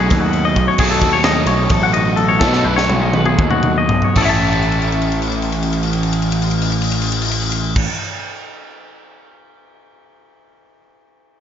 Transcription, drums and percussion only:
0.10 kick, snare, ride
0.33 ride
0.56 kick, ride
0.78 kick, crash
1.01 kick, ride
1.24 snare, ride
1.47 ride
1.69 kick, snare, ride
1.94 ride
2.17 ride
2.41 kick, snare
2.53 snare
2.78 snare
2.90 high tom
3.13 mid tom
3.26 mid tom
3.39 kick
3.50 mid tom
3.63 mid tom
3.89 floor tom
4.02 floor tom
4.16 kick, crash
4.42 crash
4.52 ride
4.62 crash
4.72 ride
4.82 crash
4.92 ride
5.02 crash
5.12 ride
5.22 crash
5.32 ride
5.42 crash
5.52 ride
5.63 crash
5.73 ride
5.83 crash
5.93 ride
6.03 crash
6.13 ride
6.22 crash
6.32 ride
6.42 crash
6.51 ride
6.61 crash
6.72 ride
6.82 crash
6.92 ride
7.02 crash
7.12 ride
7.22 crash
7.31 ride
7.42 crash
7.52 ride
7.76 kick, crash

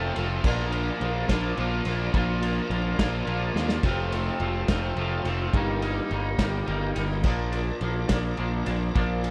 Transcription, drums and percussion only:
0.16 ride
0.44 kick, crash
0.72 ride
1.01 ride
1.29 kick, snare, ride
1.57 ride
1.85 ride
2.14 kick, ride
2.42 ride
2.71 ride
2.99 kick, snare, ride
3.27 ride
3.56 snare
3.69 snare
3.83 kick, crash, ride
4.12 ride
4.40 ride
4.68 kick, snare, ride
4.96 ride
5.25 ride
5.54 kick, ride
5.82 ride
6.11 ride
6.39 kick, snare, ride
6.67 ride
6.96 ride
7.23 kick, crash
7.52 ride
7.81 ride
8.09 kick, snare, ride
8.37 ride
8.66 ride
8.95 kick, ride
9.24 ride

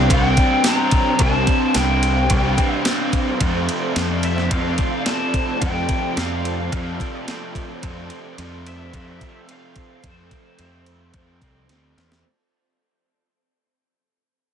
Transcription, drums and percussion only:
0.10 kick, ride
0.37 kick, ride
0.64 snare, ride, tambourine
0.91 kick, ride
1.19 kick, ride
1.47 kick, ride
1.74 snare, ride, tambourine
2.03 ride
2.30 kick, ride
2.58 kick, ride
2.85 snare, ride, tambourine
3.13 kick, ride
3.41 kick, ride
3.69 ride
3.96 snare, ride
4.23 ride
4.38 snare
4.51 kick, ride
4.78 kick, ride
5.06 snare, ride
5.34 kick, ride
5.62 kick, ride
5.89 kick, ride
6.17 snare, ride
6.45 ride
6.72 kick, ride
7.00 kick, ride
7.28 snare, ride
7.55 kick, ride
7.83 kick, ride
8.10 ride
8.38 ride
8.66 ride
8.93 kick, ride
9.21 kick, ride
9.49 ride
9.76 kick, ride
10.04 kick, ride
10.31 kick, ride
10.59 ride
10.86 ride
11.14 kick, ride
11.42 kick, ride
11.69 snare, ride
11.98 snare, ride
12.12 snare

